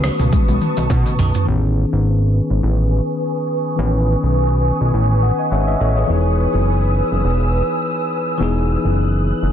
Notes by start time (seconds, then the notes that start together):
Already playing: C#2 D#3 A3 B3 C#4 F#4 B4 A5 C#6 D#6
0.04 cross-stick, open hi-hat, low bongo, shaker
0.19 C#2, mid tom, shaker
0.32 kick, high tom, low conga, shaker
0.48 B1, high tom, shaker
0.61 mid tom, shaker
0.77 B1, mid tom, low bongo, shaker
0.90 B2, kick, mid tom, high bongo, shaker
1.06 mid tom, shaker
1.19 B1, floor tom, open hi-hat, low conga, shaker
1.34 floor tom, high bongo, shaker
1.45 A1 D#3 B3 C#4 B4 G#5 C#6 D#6
1.50 G4
1.57 G#4
1.93 G#1
2.50 G#1
2.63 A1
3.76 A1 D#3 B3 C#4
3.81 B4
4.23 B1
4.81 B1
4.94 A1
5.23 F#5
5.39 D#5 G#5
5.52 G#1 C#5 E5 F#5
5.67 B4 D#5 E5
5.80 A1 A4 C#5 D#5
5.96 G#4 C#5
6.07 E1 E3 B3 D#4 E6
6.12 G#4
6.54 F#1
7.12 F#1
7.25 E1
8.38 E1 E3 B3 D#4 F#6
8.43 G#4
8.85 F#1
9.43 F#1